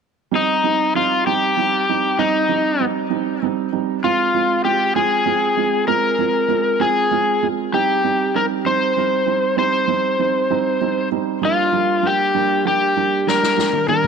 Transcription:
0.31 G3 C4 D#4
0.35 D#4
0.64 G3 C4 D#4
0.95 G3 C4 D#4 F4
1.26 G3 C4 D#4 G4
1.57 G3 C4 D#4
1.89 G3 C4 D#4
2.19 G3 C4 D#4
2.49 G3 C4 D#4
2.80 G3 C4 D#4
3.10 G3 C4 D#4
3.42 G3 C4 D#4
3.72 G3 C4 D#4
4.04 G#3 C4 F4
4.34 G#3 C4 F4
4.64 G#3 C4 F4 G4
4.95 G#3 C4 F4 G#4
5.26 G#3 C4 F4
5.57 G#3 C4 F4
5.88 G#3 C4 F4 A#4
6.19 G#3 C4 F4
6.48 G#3 C4 F4
6.80 G#3 C4 F4 G#4
7.11 G#3 C4 F4
7.43 G#3 C4 F4
7.73 G3 C4 D#4 G4
8.04 G3 C4 D#4
8.35 G3 C4 D#4 A#4
8.65 G3 C4 D#4 C5
8.97 G3 C4 D#4
9.26 G3 C4 D#4
9.57 G3 C4 D#4 C5
9.87 G3 C4 D#4
10.19 G3 C4 D#4
10.50 G3 C4 D#4
10.81 G3 C4 D#4
11.12 G3 C4 D#4
11.41 G3 A#3 D4 F4
11.73 G3 A#3 D4
12.03 G3 A#3 D4
12.07 G4
12.35 G3 A#3 D4
12.65 G3 A#3 D4 G4
12.96 G3 A#3 D4
13.27 G3 A#3 D4 A#4, snare
13.43 snare
13.57 G3 A#3 D4, snare
13.73 high tom
13.88 G3 A#3 D4 A#4, high tom
14.04 mid tom

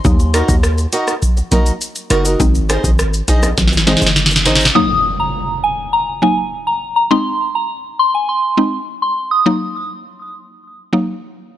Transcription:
0.05 D#2 F#3 A#3 D#4, kick, shaker
0.19 shaker
0.34 D#4 F#4 A#4 D#5, cross-stick, closed hi-hat, shaker
0.48 D#2, kick, shaker
0.63 cross-stick, shaker
0.78 shaker
0.93 D#4 F#4 A#4 D#5, closed hi-hat, shaker
1.08 cross-stick, shaker
1.22 kick, shaker
1.37 muted steel-string acoustic guitar stroke, shaker
1.51 F#3 A#3 D#4 F#4 A#4 D#5, kick, closed hi-hat, shaker
1.66 shaker
1.81 shaker
1.95 shaker
2.10 F#1 D#4 F#4 A#4 D#5, cross-stick, closed hi-hat, shaker
2.25 D#4 F#4 A#4 D#5, shaker
2.40 G#1 G#3 C4 D#4, kick, shaker
2.55 shaker
2.69 D#4 G#4 C5 D#5, cross-stick, closed hi-hat, high timbale, shaker
2.84 G#1, kick, shaker
2.99 cross-stick, shaker
3.14 shaker
3.28 A#1 D#4 G#4 C5 D#5, kick, closed hi-hat, shaker
3.43 cross-stick, high timbale, shaker
3.58 G#1, kick, snare, shaker
3.67 snare
3.72 muted steel-string acoustic guitar stroke, shaker
3.77 snare
3.87 G#3 C4 D#4 G#4 C5 D#5, snare, closed hi-hat, high timbale, shaker
3.97 snare
4.02 F#1, shaker
4.06 snare
4.16 snare, shaker
4.26 snare
4.31 muted steel-string acoustic guitar stroke, shaker
4.36 snare
4.45 G#1 D#4 G#4 C5 D#5, snare, closed hi-hat, shaker
4.55 snare
4.60 shaker
4.65 snare
4.75 F#3 A#3 D#4 D#6, impact
5.20 A#5
5.64 G#5
5.93 A#5
6.22 F#3 A#3 D#4 G#5
6.67 A#5
6.96 A#5
7.11 G#3 C4 D#4 C6
7.55 A#5
7.99 C6
8.15 G#5
8.29 C6
8.57 G#3 C4 D#4
9.02 C6
9.31 D#6
9.46 F#3 A#3 D#4
10.93 F#3 A#3 D#4

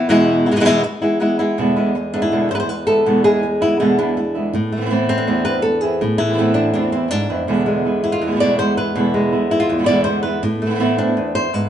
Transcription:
0.09 E2 B2 E3 G#3 B3 E4
0.46 E3 G#3 B3 E4
0.51 B2 E3 G#3 B3 E4
0.56 B2 E3 G#3 B3 E4
0.60 B2 E3 G#3 B3 E4
0.65 E2 B2 E3 G#3 B3 E4
0.83 muted nylon-string guitar stroke
1.02 E3 G#3 B3 E4
1.20 E3 G#3 B3 E4
1.39 E3 G#3 B3 E4
1.58 E2 B2 D3 G#3 B3 E4
1.76 D3 G#3 B3 E4
1.95 muted nylon-string guitar stroke
2.14 D3 G#3 B3 D4 E4
2.22 E4
2.32 E2 B2 D3 G#3 B3 E4
2.50 D3 G#3 B3 E4 C5
2.55 B4
2.60 C5
2.69 B4, muted nylon-string guitar stroke
2.87 D3 G#3 B3 E4 A4
3.06 E2 B2 D3 G#3 B3 E4
3.24 D3 G#3 B3 E4 G#4
3.42 muted nylon-string guitar stroke
3.61 D3 G#3 B3 E4
3.80 E2 B2 D3 G#3 B3 E4
3.98 D3 G#3 B3 D4 E4
4.17 E4, muted nylon-string guitar stroke
4.35 D3 G#3 B3 E4
4.54 A2, muted nylon-string guitar stroke
4.72 A3
4.76 E3 B3 C4 E4
4.81 E3 B3 C4 E4
4.85 E3 B3 C4 E4
4.90 A2 E3 B3 C4 E4
5.09 C4
5.18 D4
5.27 E2 A2 E3 B3 C4 E4
5.45 B3 C4 E4 B4
5.62 A4, muted nylon-string guitar stroke
5.81 B3 C4 E4 G#4
6.01 A2, muted nylon-string guitar stroke
6.18 E3 E4
6.29 E3 B3 C4 E4
6.34 E3 B3 C4 E4
6.38 A2 E3 A3 B3 C4 E4
6.54 D4
6.74 E2 A2 E3 B3 C4 D4 E4
6.92 B3 C4 E4
7.11 G#2 D4, muted nylon-string guitar stroke
7.29 F2 B3 C4 E4
7.47 E2 B2 D3 G#3 B3 E4
7.66 G#3
7.85 D3 G#3 B3 E4
8.04 E4
8.12 F4
8.21 E2, muted nylon-string guitar stroke
8.27 B2 D3 G#3 B3 E4
8.31 B2 D3 G#3 B3 E4
8.36 B2 D3 G#3 B3 E4
8.40 E2 B2 D3 G#3 B3 E4 D5
8.59 D3 G#3 B3 E4 C5
8.77 D3 G#3 B3 E4 B4
8.95 E2 B2 D3 G#3 B3 E4
9.14 G#3
9.32 D3 G#3 B3 E4
9.51 E4
9.60 F4
9.69 E2, muted nylon-string guitar stroke
9.78 B2 D3 G#3 B3 E4
9.83 B2 D3 G#3 B3 E4 D5
9.88 E2 B2 D3 G#3 B3 E4
10.04 D3 G#3 B3 E4 C5
10.23 D3 G#3 B3 E4 B4
10.43 A2, muted nylon-string guitar stroke
10.62 E3 A3
10.66 B3 C4 E4
10.70 E3 B3 C4 E4
10.75 E3 B3 C4 E4
10.79 A2 E3 B3 C4 E4
10.97 B3 C4 D4 E4
11.07 E4
11.17 E2
11.35 C5
11.53 G#2 B4, muted nylon-string guitar stroke

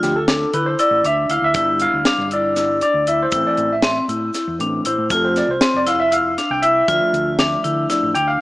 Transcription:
Already playing: F3 A3 D4 F4
0.03 D2 G4, snare, closed hi-hat, shaker
0.16 A4
0.28 D4, snare, closed hi-hat
0.53 D3 E4 B4, closed hi-hat, shaker
0.66 C5
0.79 E4 D5, closed hi-hat, shaker
0.91 A1
1.04 D2 D4 E5, closed hi-hat
1.29 D2 E4 F5, closed hi-hat
1.42 D2 E5
1.53 G1 G3 B3 D4 E4, kick, closed hi-hat, shaker
1.80 F5, closed hi-hat, shaker
1.93 D2
2.05 D4, snare, closed hi-hat
2.18 G1
2.31 E4 D5, closed hi-hat
2.56 G3 B3 D4 E4, snare, closed hi-hat, shaker
2.81 D4 D5, closed hi-hat
2.94 D2
3.07 E4 E5, closed hi-hat, shaker
3.23 C5
3.32 A1 E3 A3 C4 E4, kick, closed hi-hat, shaker
3.47 D5
3.57 A1, closed hi-hat, shaker
3.72 E5
3.82 C4, snare, closed hi-hat
4.08 A2 E4, closed hi-hat, shaker
4.34 E4, snare, closed hi-hat, shaker
4.48 E2
4.59 A1 E3 A3 C4 D4, closed hi-hat
4.85 A1 E4 C5, closed hi-hat
4.98 A2
5.10 F1 F3 A3 C4 F4 A4, kick, closed hi-hat, shaker
5.25 C5
5.36 D5, snare, closed hi-hat, shaker
5.48 C2 C5
5.61 C4, snare, closed hi-hat
5.74 F1 D5
5.87 E4 F5, snare, closed hi-hat, shaker
6.00 E5
6.12 E4 F5, closed hi-hat, shaker
6.38 D4, snare, closed hi-hat
6.50 C2 G5
6.62 E4 E5, closed hi-hat
6.88 D2 F3 A3 D4 F4, kick, closed hi-hat, shaker
7.13 D2, closed hi-hat, shaker
7.39 D4, snare, closed hi-hat
7.64 D3 E4, closed hi-hat, shaker
7.90 F3 A3 D4 E4, snare, closed hi-hat, shaker
8.03 A1
8.15 D2 D4 G5, closed hi-hat
8.28 F5

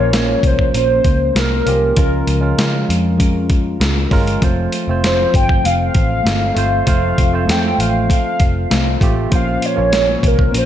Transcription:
Already playing: A#1 A#2 F3 A#3 C#4 F4 C5 C#5
0.00 F4 A#4
0.13 A#3 C#4 F4, snare, closed hi-hat
0.43 C2 C5, kick, closed hi-hat
0.59 kick
0.74 A#1 A#3 C#4 F4 C5, closed hi-hat
0.79 C5
1.04 C#2, kick, closed hi-hat
1.33 C2 A#3 C#4 F4 C5, snare, closed hi-hat
1.39 A#4
1.66 C2 A#3 C#4 F4 G4, closed hi-hat
1.96 C#2 C#3 F3 G#3 C#4 F4 A#4, kick, closed hi-hat
2.27 C#2, closed hi-hat
2.41 G#3 C#4 F4 A#4
2.58 C#3 G#3 C#4 F4 A#4, snare, closed hi-hat
2.89 F2, closed hi-hat
3.18 G#3 C#4 F4 A#4, kick, closed hi-hat
3.50 kick, closed hi-hat
3.80 C#2 G#3 C#4 F4, snare, closed hi-hat
3.84 A#4
4.11 G1 G#3 C#4 F4 A#4, kick, snare, open hi-hat
4.27 closed hi-hat
4.41 F1 F3 A3 C4 F4 C5, kick, closed hi-hat
4.45 F4 A4
4.72 closed hi-hat
4.88 F1 A3 C4 F4 C5
5.04 C5, snare, closed hi-hat
5.33 G1 G5, kick, closed hi-hat
5.49 kick
5.64 F1 A3 C4 F4 A4 F5, closed hi-hat
5.95 A1, kick, closed hi-hat
6.23 G1 A3 C4 F4, snare, closed hi-hat
6.27 A4
6.55 G1 A3 C4 F4 C5, closed hi-hat
6.85 F1 F3 A3 C4 F4 A4 C5 F5, kick, closed hi-hat
7.18 F1, kick, closed hi-hat
7.33 A3 C4 F4 C5
7.45 F2 A3 C4 F4, closed hi-hat
7.50 A4 G5, snare
7.78 A1 F5, closed hi-hat
8.08 A3 C4 F4 A4, kick, closed hi-hat
8.13 F5
8.40 F1, kick, closed hi-hat
8.70 C2 A3 C4 F4 A4, snare, closed hi-hat
9.01 A1 A3 C4 F4 G4, kick, closed hi-hat
9.30 A#1 A#2 F3 A#3 C#4 F4 C5, kick, closed hi-hat
9.35 F4 F5
9.62 C#5, closed hi-hat
9.76 A#1 A#3 C#4 F4 C#5
9.93 snare, closed hi-hat
10.23 C2, kick, closed hi-hat
10.27 A#4
10.39 kick
10.52 A#1 A#3 C#4 F4 C5, closed hi-hat
10.58 C5

